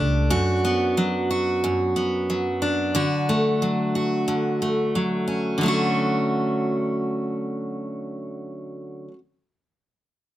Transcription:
0.00 0.28 C#2 medium
0.00 0.38 G3 medium
0.00 0.38 A3 medium
0.00 2.61 D4 soft
0.00 0.30 G4 medium
0.30 1.63 F#2 medium
0.30 1.30 F#4 medium
0.65 1.95 B3 medium
0.97 2.29 F#3 medium
1.31 2.95 F#4 medium
1.64 3.04 F#2 medium
1.96 3.03 B3 medium
2.30 3.62 F#3 medium
2.62 5.27 D4 medium
2.95 4.27 D3 medium
2.95 3.95 F#4 medium
3.29 4.61 A3 soft
3.62 4.95 F#3 medium
3.95 5.68 F#4 medium
4.28 5.57 D3 medium
4.62 5.63 A3 soft
4.95 5.61 F#3 medium
5.28 5.65 C#4 soft
5.58 9.08 D3 medium
5.58 9.11 F#3 medium
5.63 9.13 A3 medium
5.63 9.16 C#4 medium
5.68 9.18 F#4 medium

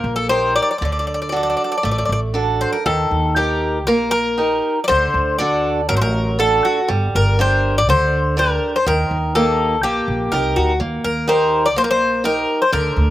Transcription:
0.00 0.58 A#1 medium
0.00 0.28 A#3 medium
0.00 0.14 A#4 medium
0.16 0.29 A4 medium
0.29 0.71 D#4 soft
0.29 0.71 G4 soft
0.29 0.72 A#4 soft
0.29 0.54 C5 loud
0.56 0.61 D5 medium
0.62 0.69 D5 medium
0.71 0.77 D5 medium
0.78 1.53 D2 medium
0.78 1.32 D3 medium
0.78 0.84 D5 medium
0.85 0.91 D5 medium
0.92 0.98 D5 medium
0.99 1.06 D5 medium
1.07 1.13 D5 medium
1.14 1.20 D5 medium
1.22 1.28 D5 medium
1.29 1.74 D4 medium
1.29 1.74 F#4 soft
1.29 1.35 D5 medium
1.33 1.74 A4 soft
1.33 1.42 D5 soft
1.43 1.48 D5 medium
1.50 1.55 D5 medium
1.57 1.63 D5 medium
1.64 1.70 D5 medium
1.72 1.76 D5 medium
1.78 1.84 D5 medium
1.83 2.02 A1 medium
1.83 2.34 A3 medium
1.83 1.90 D5 medium
1.91 1.97 D5 medium
1.98 2.04 D5 medium
2.05 2.63 A1 medium
2.05 2.11 D5 medium
2.12 2.19 D5 medium
2.34 2.76 D4 soft
2.34 2.76 F#4 soft
2.34 2.76 A4 soft
2.61 2.72 C5 medium
2.73 2.86 A#4 medium
2.86 3.04 D#2 medium
2.86 3.36 D#3 medium
2.86 3.34 A4 medium
3.11 3.88 D#2 medium
3.36 3.78 D#4 medium
3.36 3.78 G4 soft
3.36 3.84 G4 medium
3.36 3.78 A#4 medium
3.87 4.59 A#1 loud
3.87 4.37 A#3 medium
3.87 4.10 A#4 medium
4.11 4.78 A#4 medium
4.38 4.79 D#4 soft
4.38 4.79 G4 soft
4.38 4.79 A#4 soft
4.84 5.38 C5 loud
4.84 4.87 D5 medium
4.89 5.07 D2 medium
4.89 5.38 D3 medium
5.14 5.91 D2 medium
5.38 5.80 D4 medium
5.38 5.80 F#4 soft
5.38 5.80 A4 medium
5.38 5.86 D5 medium
5.89 6.60 A1 loud
5.89 6.38 F#3 medium
5.89 5.96 A#4 loud
5.97 6.01 C5 medium
6.02 6.39 A#4 medium
6.39 6.79 D4 soft
6.39 6.79 F#4 soft
6.39 6.79 A4 soft
6.39 6.65 A4 medium
6.65 6.88 F#4 medium
6.88 7.07 G1 medium
6.88 7.37 G3 medium
7.15 7.89 G1 medium
7.15 7.40 A#4 medium
7.39 7.79 D4 medium
7.39 7.79 G4 soft
7.39 7.79 A#4 medium
7.39 7.74 C5 medium
7.78 7.89 D5 medium
7.89 8.57 D2 loud
7.89 8.36 D3 medium
7.89 8.35 C5 loud
8.37 8.77 D4 medium
8.37 8.77 G4 soft
8.37 8.77 A#4 medium
8.37 8.75 A#4 medium
8.76 8.87 C5 medium
8.86 9.04 D#2 medium
8.86 9.34 D#3 medium
8.86 9.33 A#4 medium
9.11 9.84 D#2 medium
9.35 9.75 A#3 medium
9.35 9.74 D#4 medium
9.35 9.75 G4 soft
9.35 9.81 A4 medium
9.83 10.01 A#1 loud
9.83 10.31 A#3 medium
9.83 10.34 G4 medium
10.08 10.30 A#1 medium
10.32 10.54 C2 medium
10.32 10.71 D#4 soft
10.32 10.71 G4 soft
10.32 10.55 A#4 medium
10.32 10.72 A#4 soft
10.56 10.79 D2 medium
10.56 10.79 F#4 medium
10.80 10.98 D#2 medium
10.80 11.27 A#3 medium
11.04 11.76 D#2 medium
11.04 11.27 A#4 medium
11.28 11.67 D#4 medium
11.28 11.67 G4 soft
11.28 11.67 A#4 medium
11.28 11.63 C5 medium
11.66 11.77 D5 medium
11.76 12.44 A#1 loud
11.76 12.23 A#3 medium
11.76 11.83 C5 loud
11.84 11.90 A#4 medium
11.91 12.23 C5 medium
12.24 12.63 D#4 medium
12.24 12.63 G4 soft
12.24 12.61 A#4 medium
12.24 12.63 A#4 medium
12.62 12.72 C5 medium
12.72 12.89 D2 medium
12.72 13.10 D3 medium
12.72 13.10 A#4 medium
12.96 13.10 D2 loud

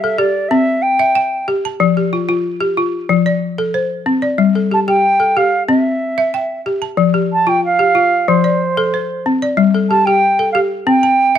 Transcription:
0.00 0.51 A4 medium
0.00 0.20 E5 medium
0.18 0.51 G4 medium
0.18 0.50 D5 medium
0.49 0.83 C4 medium
0.49 0.84 E5 medium
0.82 1.47 G5 medium
0.99 1.32 E5 medium
1.15 1.64 G5 medium
1.48 1.80 G4 medium
1.65 1.97 A5 medium
1.80 2.12 F3 medium
1.97 2.45 G4 medium
2.13 2.27 F4 medium
2.29 2.61 F4 medium
2.61 3.09 G4 medium
2.77 3.09 F4 medium
3.09 3.42 F3 medium
3.26 3.74 D5 medium
3.58 3.90 A4 medium
3.74 4.23 C5 medium
4.06 4.38 C4 medium
4.22 4.55 D5 medium
4.38 4.71 G3 medium
4.55 5.03 A4 medium
4.71 4.87 G4 medium
4.71 4.80 A5 medium
4.88 5.20 G4 medium
4.88 5.39 G5 loud
5.20 5.68 A4 medium
5.37 5.68 G4 medium
5.37 5.68 F5 medium
5.68 6.01 C4 medium
5.68 6.61 E5 medium
6.18 6.50 E5 medium
6.34 6.82 G5 medium
6.66 6.98 G4 medium
6.82 7.14 A5 medium
6.97 7.30 F3 medium
7.14 7.62 G4 medium
7.33 7.50 A5 medium
7.47 7.79 F4 medium
7.47 7.63 G5 medium
7.65 8.30 F5 loud
7.79 8.27 G4 medium
7.95 8.27 F4 medium
8.28 8.60 F3 medium
8.28 9.25 C5 medium
8.44 8.92 D5 medium
8.77 9.09 A4 medium
8.94 9.42 C5 medium
9.26 9.58 C4 medium
9.42 9.74 D5 medium
9.57 9.89 G3 medium
9.74 10.22 A4 medium
9.90 10.06 G4 medium
9.90 10.07 A5 loud
10.06 10.39 G4 medium
10.06 10.52 G5 loud
10.39 10.87 A4 medium
10.52 10.87 G4 medium
10.52 10.60 F5 medium
10.87 11.19 C4 medium
10.87 11.38 G5 medium
11.03 11.38 A5 medium

